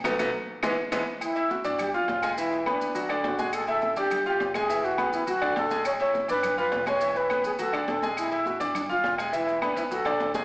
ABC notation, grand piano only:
X:1
M:4/4
L:1/8
Q:1/4=207
K:Emix
V:1 name="Grand piano"
[F,A,B,] [F,A,B,] z2 [E,G,B,] z [E,G,B,] z | z [Eee']2 [Ddd']2 [=F=f=f']2 [G,Gg] | [E,Ee]2 [B,Bb]2 [F,Ff] [D,Dd]2 [G,Gg]- | [G,Gg] [Eee']2 [Ddd']2 [=F=f=f']2 [G,Gg] |
[E,Ee]2 [B,Bb]2 [F,Ff] [D,Dd]2 [G,Gg]- | [G,Gg] [Eee']2 [Ddd']2 [=F=f=f']2 [G,Gg] | [E,Ee]2 [B,Bb]2 [F,Ff] [D,Dd]2 [G,Gg]- | [G,Gg] [Eee']2 [Ddd']2 [=F=f=f']2 [G,Gg] |
[E,Ee]2 [B,Bb]2 [F,Ff] [D,Dd]2 [G,Gg] |]